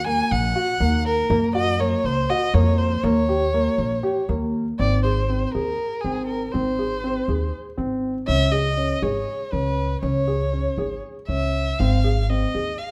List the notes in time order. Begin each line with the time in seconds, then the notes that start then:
Already playing: D#2
0.06 A#3 G#5
0.31 A#1 F#5
0.56 F#4
0.80 D#2 A#3
1.06 A#4
1.30 F#2 A#3
1.55 F#4 D#5
1.79 A#3 C#5
2.04 C#2 C5
2.30 F#4 D#5
2.54 F2 A#3 C#5
2.78 C5
3.03 D#2 A#3 C#5
3.29 G4
3.54 A#3
3.78 A#1
4.03 G4
4.29 D#2 A#3
4.79 G#1 C4 D5
5.03 G#4 C5
5.30 C4
5.47 C5
5.53 D#2 G#4 A#4
6.01 G#1 C4 G#4
6.27 A#4
6.52 G#1 C4 C5
6.79 G#4
7.04 C4
7.28 D#2 G#4
7.78 G#1 C4
8.27 C#2 C#4 E5
8.52 G#4 D#5
8.77 C#4
9.02 G#1 G#4 C#5
9.52 C#2 C#4 B4
10.02 C#2 C#4 C#5
10.28 G#4
10.53 C#4
10.78 G#1 G#4
11.28 C#2 C#4 E5
11.79 G#1 C4 F5
12.04 G#4
12.23 F5
12.29 C4 D#5
12.55 D#2 G#4
12.79 F5